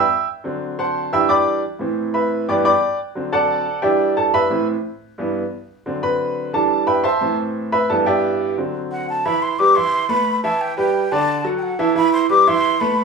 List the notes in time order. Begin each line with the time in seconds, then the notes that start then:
Already playing: E5 G5 B5 E6
0.44 D3 F#3 C4
0.79 C5 F#5 A5 C6
1.12 E3 G3 D4 E5 G5 B5 E6
1.29 D5 G5 B5 D6
1.79 A2 E3 C4
2.14 B4 E5 B5
2.48 G2 E3 B3 D5 G5 B5 D6
2.65 D5 G5 B5 D6
3.15 D3 F#3 C4
3.33 A4 D5 F#5 A5
3.82 E3 G3 D4 G4 D5 E5 G5
4.17 A4 A5
4.34 B4 E5 B5
4.50 A2 E3 C4
5.18 G2 E3 B3
5.86 D3 F#3 C4
6.03 B4 B5
6.53 E3 G3 D4 A4 A5
6.87 B4 E5 G5 B5
7.04 C5 E5 A5 C6
7.21 A2 E3 C4
7.72 B4 E5 B5
7.89 G2 E3 B3 A4 A5
8.06 G4 D5 E5 G5
8.58 D3 F#3 C4
8.92 F#5
9.09 A5
9.26 E3 E4 E5 B5
9.42 C6
9.59 G3 G4 B4 D6
9.76 E3 E4 E5 C6
10.09 A3 A4 B4 B5
10.44 E3 E4 E5 A5
10.61 G5
10.77 G3 G4 B4 G5
11.12 D3 D4 D5 A5
11.44 F#3 F#4 A4
11.58 G5
11.63 F#5
11.79 E3 E4 E5 A5
11.95 E3 E4 E5 B5
12.13 C6
12.29 G3 G4 B4 D6
12.47 E3 E4 E5 C6
12.80 A3 A4 B4 B5